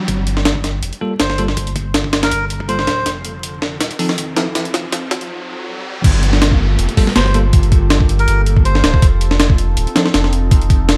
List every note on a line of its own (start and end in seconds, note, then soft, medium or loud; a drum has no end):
0.08 0.81 G1 loud
0.08 3.03 A#3 medium
0.08 6.00 F4 medium
0.08 3.03 G4 medium
0.08 6.00 A4 medium
0.08 kick loud
0.08 closed hi-hat medium
0.08 riser medium
0.27 closed hi-hat medium
0.37 snare soft
0.45 snare loud
0.45 closed hi-hat medium
0.55 kick medium
0.64 snare soft
0.64 closed hi-hat medium
0.83 0.92 F1 loud
0.83 closed hi-hat medium
0.93 closed hi-hat soft
1.01 1.13 G3 medium
1.01 1.13 A#3 medium
1.01 1.13 F4 medium
1.01 1.13 A4 medium
1.20 1.56 G1 medium
1.20 1.42 C5 medium
1.20 snare loud
1.20 closed hi-hat medium
1.30 snare soft
1.38 1.46 G3 medium
1.38 1.46 A#3 medium
1.38 1.46 F4 medium
1.38 1.46 A4 loud
1.38 closed hi-hat medium
1.48 snare soft
1.57 2.30 G1 loud
1.57 kick loud
1.57 closed hi-hat medium
1.67 closed hi-hat soft
1.76 kick loud
1.76 closed hi-hat medium
1.94 snare loud
1.94 closed hi-hat medium
2.04 kick medium
2.13 snare loud
2.13 closed hi-hat medium
2.23 2.45 A#4 medium
2.23 snare loud
2.23 closed hi-hat medium
2.31 2.86 G1 medium
2.31 closed hi-hat medium
2.50 closed hi-hat medium
2.60 kick medium
2.69 2.76 G3 medium
2.69 2.76 A#3 medium
2.69 2.76 F4 medium
2.69 2.76 A4 medium
2.69 3.10 C5 loud
2.69 closed hi-hat medium
2.79 snare soft
2.87 3.04 D1 medium
2.87 snare medium
2.87 closed hi-hat medium
3.06 3.79 F1 loud
3.06 6.01 C4 medium
3.06 6.01 D#4 medium
3.06 snare soft
3.06 closed hi-hat medium
3.25 closed hi-hat medium
3.43 closed hi-hat medium
3.62 snare medium
3.81 3.90 D#1 loud
3.81 snare medium
3.81 closed hi-hat medium
3.91 closed hi-hat soft
3.99 4.11 F3 medium
3.99 4.11 C4 medium
3.99 4.11 D#4 medium
3.99 4.11 A4 loud
3.99 open hi-hat medium
4.09 snare medium
4.18 4.54 F1 medium
4.18 closed hi-hat medium
4.36 4.44 F3 medium
4.36 4.44 C4 medium
4.36 4.44 D#4 medium
4.36 4.44 A4 loud
4.36 snare medium
4.36 closed hi-hat medium
4.55 5.28 F1 loud
4.55 snare medium
4.55 closed hi-hat medium
4.65 closed hi-hat soft
4.74 snare medium
4.74 closed hi-hat medium
4.92 snare medium
4.92 closed hi-hat medium
5.11 snare medium
5.11 closed hi-hat medium
5.21 closed hi-hat soft
6.04 6.77 G1 loud
6.04 8.99 A#3 medium
6.04 10.97 F4 medium
6.04 8.99 G4 medium
6.04 10.97 A4 loud
6.04 kick loud
6.04 closed hi-hat medium
6.04 crash medium
6.04 downlifter medium
6.23 closed hi-hat medium
6.33 snare medium
6.42 snare loud
6.42 closed hi-hat medium
6.52 kick medium
6.79 6.88 F1 loud
6.79 closed hi-hat medium
6.89 closed hi-hat soft
6.97 7.09 G3 medium
6.97 7.09 A#3 medium
6.97 7.09 F4 medium
6.97 7.09 A4 loud
6.97 kick medium
6.97 open hi-hat medium
7.07 snare medium
7.16 7.52 G1 medium
7.16 7.39 C5 medium
7.16 snare loud
7.16 closed hi-hat medium
7.26 snare soft
7.34 7.42 G3 loud
7.34 7.42 A#3 medium
7.34 7.42 F4 medium
7.34 7.42 A4 loud
7.34 closed hi-hat medium
7.53 8.26 G1 loud
7.53 kick loud
7.53 closed hi-hat medium
7.63 closed hi-hat soft
7.72 kick loud
7.72 closed hi-hat medium
7.90 snare loud
7.90 closed hi-hat medium
8.01 kick medium
8.09 closed hi-hat medium
8.19 8.41 A#4 loud
8.19 closed hi-hat soft
8.28 8.82 G1 medium
8.28 closed hi-hat medium
8.46 closed hi-hat medium
8.57 kick loud
8.65 9.07 C5 loud
8.65 closed hi-hat medium
8.75 snare soft
8.84 9.01 D1 medium
8.84 snare loud
8.84 closed hi-hat medium
8.94 kick medium
9.02 9.76 F1 loud
9.02 10.97 C4 medium
9.02 10.97 D#4 medium
9.02 kick loud
9.02 closed hi-hat medium
9.21 closed hi-hat medium
9.31 snare medium
9.40 snare loud
9.40 closed hi-hat medium
9.50 kick medium
9.58 closed hi-hat medium
9.77 9.86 D#1 loud
9.77 closed hi-hat medium
9.87 closed hi-hat soft
9.96 10.07 F3 medium
9.96 10.07 C4 medium
9.96 10.07 D#4 medium
9.96 10.07 A4 medium
9.96 snare loud
9.96 closed hi-hat medium
10.06 snare medium
10.14 10.50 F1 medium
10.14 snare loud
10.14 closed hi-hat medium
10.24 snare soft
10.33 closed hi-hat medium
10.51 10.97 F1 loud
10.51 kick loud
10.51 closed hi-hat medium
10.62 closed hi-hat soft
10.70 kick loud
10.70 closed hi-hat medium
10.89 snare loud
10.89 closed hi-hat medium